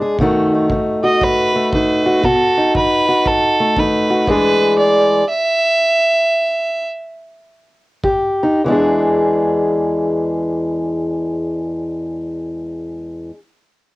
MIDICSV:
0, 0, Header, 1, 4, 480
1, 0, Start_track
1, 0, Tempo, 512821
1, 166, Time_signature, 4, 2, 24, 8
1, 4486, Tempo, 530035
1, 6406, Tempo, 573614
1, 7846, Tempo, 600000
1, 12103, End_track
2, 0, Start_track
2, 0, Title_t, "Fiddle"
2, 0, Program_c, 0, 110
2, 974, Note_on_c, 0, 75, 78
2, 1151, Note_on_c, 0, 71, 87
2, 1165, Note_off_c, 0, 75, 0
2, 1618, Note_off_c, 0, 71, 0
2, 1625, Note_on_c, 0, 71, 79
2, 2105, Note_on_c, 0, 69, 86
2, 2119, Note_off_c, 0, 71, 0
2, 2575, Note_off_c, 0, 69, 0
2, 2588, Note_on_c, 0, 71, 87
2, 3063, Note_on_c, 0, 69, 88
2, 3077, Note_off_c, 0, 71, 0
2, 3545, Note_on_c, 0, 71, 81
2, 3559, Note_off_c, 0, 69, 0
2, 4015, Note_off_c, 0, 71, 0
2, 4022, Note_on_c, 0, 71, 94
2, 4461, Note_off_c, 0, 71, 0
2, 4479, Note_on_c, 0, 74, 97
2, 4918, Note_off_c, 0, 74, 0
2, 4937, Note_on_c, 0, 76, 114
2, 6360, Note_off_c, 0, 76, 0
2, 12103, End_track
3, 0, Start_track
3, 0, Title_t, "Steel-string acoustic guitar"
3, 0, Program_c, 1, 25
3, 0, Note_on_c, 1, 52, 59
3, 0, Note_on_c, 1, 56, 63
3, 0, Note_on_c, 1, 62, 60
3, 15, Note_on_c, 1, 68, 66
3, 136, Note_off_c, 1, 52, 0
3, 155, Note_off_c, 1, 56, 0
3, 157, Note_off_c, 1, 62, 0
3, 158, Note_off_c, 1, 68, 0
3, 186, Note_on_c, 1, 47, 83
3, 195, Note_on_c, 1, 51, 65
3, 202, Note_on_c, 1, 57, 72
3, 208, Note_on_c, 1, 63, 65
3, 215, Note_on_c, 1, 66, 72
3, 507, Note_off_c, 1, 63, 0
3, 511, Note_on_c, 1, 63, 53
3, 620, Note_off_c, 1, 47, 0
3, 661, Note_off_c, 1, 51, 0
3, 671, Note_on_c, 1, 51, 68
3, 966, Note_off_c, 1, 66, 0
3, 970, Note_on_c, 1, 66, 66
3, 1103, Note_off_c, 1, 51, 0
3, 1146, Note_on_c, 1, 42, 67
3, 1445, Note_off_c, 1, 57, 0
3, 1456, Note_on_c, 1, 57, 61
3, 1580, Note_off_c, 1, 42, 0
3, 1623, Note_off_c, 1, 63, 0
3, 1632, Note_on_c, 1, 51, 63
3, 1638, Note_on_c, 1, 63, 60
3, 1917, Note_off_c, 1, 66, 0
3, 1928, Note_on_c, 1, 66, 68
3, 2063, Note_off_c, 1, 51, 0
3, 2074, Note_off_c, 1, 66, 0
3, 2078, Note_off_c, 1, 57, 0
3, 2078, Note_off_c, 1, 63, 0
3, 2101, Note_on_c, 1, 47, 86
3, 2106, Note_on_c, 1, 66, 83
3, 2409, Note_on_c, 1, 63, 62
3, 2538, Note_off_c, 1, 47, 0
3, 2586, Note_on_c, 1, 51, 65
3, 2878, Note_off_c, 1, 66, 0
3, 2888, Note_on_c, 1, 66, 73
3, 3020, Note_off_c, 1, 51, 0
3, 3060, Note_on_c, 1, 42, 68
3, 3368, Note_on_c, 1, 57, 59
3, 3497, Note_off_c, 1, 42, 0
3, 3526, Note_off_c, 1, 63, 0
3, 3535, Note_on_c, 1, 51, 63
3, 3538, Note_on_c, 1, 63, 57
3, 3828, Note_off_c, 1, 66, 0
3, 3840, Note_on_c, 1, 66, 71
3, 3974, Note_off_c, 1, 51, 0
3, 3989, Note_off_c, 1, 66, 0
3, 3990, Note_off_c, 1, 63, 0
3, 3993, Note_off_c, 1, 57, 0
3, 4007, Note_on_c, 1, 40, 84
3, 4011, Note_on_c, 1, 52, 70
3, 4020, Note_on_c, 1, 56, 70
3, 4025, Note_on_c, 1, 62, 70
3, 4032, Note_on_c, 1, 68, 70
3, 4416, Note_off_c, 1, 40, 0
3, 4883, Note_off_c, 1, 52, 0
3, 4883, Note_off_c, 1, 56, 0
3, 4883, Note_off_c, 1, 62, 0
3, 4883, Note_off_c, 1, 68, 0
3, 7346, Note_on_c, 1, 41, 73
3, 7352, Note_on_c, 1, 67, 61
3, 7675, Note_on_c, 1, 63, 61
3, 7806, Note_off_c, 1, 41, 0
3, 7823, Note_off_c, 1, 67, 0
3, 7830, Note_off_c, 1, 63, 0
3, 7851, Note_on_c, 1, 40, 70
3, 7864, Note_on_c, 1, 52, 69
3, 7880, Note_on_c, 1, 56, 70
3, 7898, Note_on_c, 1, 62, 64
3, 7916, Note_on_c, 1, 68, 67
3, 11579, Note_off_c, 1, 40, 0
3, 11591, Note_off_c, 1, 52, 0
3, 11608, Note_off_c, 1, 56, 0
3, 11625, Note_off_c, 1, 62, 0
3, 11644, Note_off_c, 1, 68, 0
3, 12103, End_track
4, 0, Start_track
4, 0, Title_t, "Drums"
4, 175, Note_on_c, 9, 36, 66
4, 268, Note_off_c, 9, 36, 0
4, 652, Note_on_c, 9, 36, 68
4, 746, Note_off_c, 9, 36, 0
4, 1135, Note_on_c, 9, 36, 68
4, 1229, Note_off_c, 9, 36, 0
4, 1616, Note_on_c, 9, 36, 74
4, 1710, Note_off_c, 9, 36, 0
4, 2094, Note_on_c, 9, 36, 69
4, 2187, Note_off_c, 9, 36, 0
4, 2573, Note_on_c, 9, 36, 71
4, 2667, Note_off_c, 9, 36, 0
4, 3049, Note_on_c, 9, 36, 74
4, 3142, Note_off_c, 9, 36, 0
4, 3524, Note_on_c, 9, 36, 70
4, 3618, Note_off_c, 9, 36, 0
4, 4000, Note_on_c, 9, 36, 69
4, 4094, Note_off_c, 9, 36, 0
4, 7345, Note_on_c, 9, 36, 69
4, 7429, Note_off_c, 9, 36, 0
4, 12103, End_track
0, 0, End_of_file